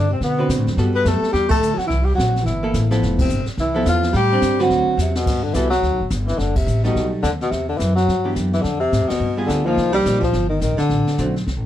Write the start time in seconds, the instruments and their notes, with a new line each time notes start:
Already playing: upright bass G2, tenor saxophone D4
0.09 baritone saxophone C3, tenor saxophone C4
0.20 baritone saxophone B2, upright bass D3, tenor saxophone B3, brush sweep, kick, snare
0.38 hollow-body jazz guitar D3 C4 F#4 B4
0.49 upright bass B2, kick, snare, hi-hat pedal
0.57 upright bass A2
0.66 upright bass F#2, snare
0.77 upright bass G2, hollow-body jazz guitar G3 B3 F#4 A4, brush sweep, kick, snare
0.94 baritone saxophone B3, tenor saxophone B4
1.04 upright bass F#2, baritone saxophone A3, tenor saxophone A4, kick, snare, hi-hat pedal
1.21 muted upright bass stroke, snare
1.31 upright bass E2, baritone saxophone G3, tenor saxophone G4, brush sweep, kick, snare
1.48 baritone saxophone A3, tenor saxophone A4, kick, crash
1.59 upright bass D2, hi-hat pedal
1.74 baritone saxophone F#3, tenor saxophone F#4, muted upright bass stroke
1.79 snare
1.86 upright bass C2, baritone saxophone E3, tenor saxophone E4, kick
1.90 brush sweep, snare
2.02 baritone saxophone G3, tenor saxophone G4
2.14 baritone saxophone F#3, tenor saxophone F#4
2.18 upright bass A#1, kick, snare, hi-hat pedal
2.36 snare
2.42 upright bass G1, baritone saxophone E3, tenor saxophone E4, kick
2.46 brush sweep, snare
2.63 hollow-body jazz guitar A#3 E4 A4
2.74 upright bass A1, kick, snare, hi-hat pedal
2.91 hollow-body jazz guitar F3 B3 E4 A4, snare
3.02 upright bass F1, brush sweep, kick, snare
3.18 baritone saxophone C3, tenor saxophone C4, kick, crash
3.29 upright bass G1, hi-hat pedal
3.46 muted upright bass stroke, snare
3.57 upright bass C2, baritone saxophone E3, tenor saxophone E4, brush sweep, kick, snare
3.74 hollow-body jazz guitar F3 B3 E4 A4
3.86 upright bass E2, baritone saxophone F3, tenor saxophone F4, kick, snare, hi-hat pedal
4.03 snare
4.12 upright bass A2, baritone saxophone G3, brush sweep, kick, snare
4.16 tenor saxophone G4
4.32 hollow-body jazz guitar G3 C4 D4
4.42 upright bass G2, kick, snare, hi-hat pedal
4.59 hollow-body jazz guitar D3 C4 F#4 B4, baritone saxophone F#3, tenor saxophone F#4, snare
4.70 upright bass D2, brush sweep, kick, snare
4.87 muted upright bass stroke
4.97 upright bass E2, snare, hi-hat pedal
5.01 tenor saxophone C3
5.15 tenor saxophone B2, snare
5.26 upright bass G2, brush sweep, kick, snare, crash
5.43 tenor saxophone D3
5.54 upright bass C2, tenor saxophone E3, hollow-body jazz guitar G3 B3 F#4 A4, kick, snare, hi-hat pedal
5.70 tenor saxophone F#3, snare
5.82 upright bass D2, brush sweep, kick, snare
5.92 upright bass B1
6.00 upright bass G1
6.10 upright bass G1, kick, snare, hi-hat pedal
6.27 tenor saxophone E3, snare
6.38 upright bass F#1, tenor saxophone D3, brush sweep, kick, snare
6.56 tenor saxophone C3, kick, crash
6.67 upright bass A1, hi-hat pedal
6.84 tenor saxophone B2, hollow-body jazz guitar G3 A3 D#4, snare
6.95 upright bass B1, brush sweep, kick, snare
7.23 upright bass D#2, tenor saxophone D3, kick, snare, hi-hat pedal
7.41 tenor saxophone B2, snare
7.51 upright bass E2, tenor saxophone C3, brush sweep, kick, snare
7.69 tenor saxophone D3
7.78 upright bass F#2, tenor saxophone E3, kick, snare, hi-hat pedal
7.95 tenor saxophone F#3, snare
8.08 upright bass G2, brush sweep, kick, snare
8.24 hollow-body jazz guitar E3 B3 D4 G4
8.36 upright bass F#2, kick, snare, hi-hat pedal
8.53 tenor saxophone E3, snare
8.62 upright bass F2, tenor saxophone D3, brush sweep, kick, snare
8.80 tenor saxophone C3
8.92 upright bass G#2, kick, snare, hi-hat pedal
9.01 upright bass F2
9.08 upright bass D2, tenor saxophone B2, snare, ride
9.20 upright bass G2, brush sweep
9.37 hollow-body jazz guitar G3 B3 F4 G#4
9.46 upright bass D2, baritone saxophone D3, tenor saxophone D3, kick, snare, hi-hat pedal
9.64 baritone saxophone F3, hollow-body jazz guitar F3 A#3, tenor saxophone F3
9.68 hollow-body jazz guitar D#4
9.77 upright bass C2, brush sweep, kick, snare
9.93 baritone saxophone G3, tenor saxophone G3
10.05 upright bass A#1, hollow-body jazz guitar F3 A#3 D#4, kick, snare, hi-hat pedal
10.20 baritone saxophone F3, tenor saxophone F3, kick, snare
10.33 upright bass G1, brush sweep, snare
10.49 tenor saxophone D#3, baritone saxophone D#3
10.59 upright bass A#1, baritone saxophone D#3, tenor saxophone D#3, kick, snare, hi-hat pedal
10.77 baritone saxophone D3, tenor saxophone D3, muted upright bass stroke, snare
10.89 upright bass A1, brush sweep, kick, snare
11.07 muted upright bass stroke, snare
11.18 upright bass B1, hollow-body jazz guitar D3 A3 C4 F#4, kick, snare, hi-hat pedal
11.36 snare
11.47 upright bass C2, brush sweep, kick, snare
11.56 upright bass A1